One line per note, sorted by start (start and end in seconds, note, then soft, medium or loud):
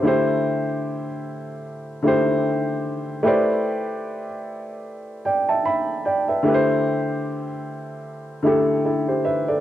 0.02 1.04 D3 medium
0.02 1.04 A3 medium
0.02 1.05 E4 medium
0.02 1.06 G4 medium
0.07 1.06 C5 medium
2.02 2.78 D3 medium
2.02 2.79 A3 medium
2.02 2.79 E4 medium
2.02 2.80 G4 medium
2.08 2.81 C5 medium
3.23 4.24 A3 medium
3.23 4.25 E4 medium
3.23 4.25 G4 medium
3.23 4.26 B4 medium
3.27 4.26 C5 medium
3.27 4.27 D5 medium
5.25 5.48 D5 medium
5.25 5.47 G5 medium
5.49 5.64 E5 medium
5.49 5.65 A5 medium
5.65 6.04 E5 medium
5.65 6.03 B5 medium
6.05 6.27 D5 medium
6.05 6.27 G5 medium
6.28 6.46 B4 soft
6.28 6.66 E5 medium
6.43 7.44 D3 medium
6.43 7.45 A3 medium
6.43 7.45 E4 medium
6.43 7.46 G4 medium
6.48 6.54 B4 medium
6.54 7.50 C5 medium
8.43 9.18 D3 medium
8.43 9.19 A3 medium
8.43 8.84 E4 medium
8.43 8.86 G4 medium
8.47 8.84 A4 medium
8.85 9.07 E4 medium
8.85 9.07 A4 medium
9.08 9.25 G4 medium
9.08 9.24 C5 medium
9.25 9.47 B4 medium
9.25 9.47 E5 medium
9.48 9.60 A4 soft
9.48 9.60 D5 medium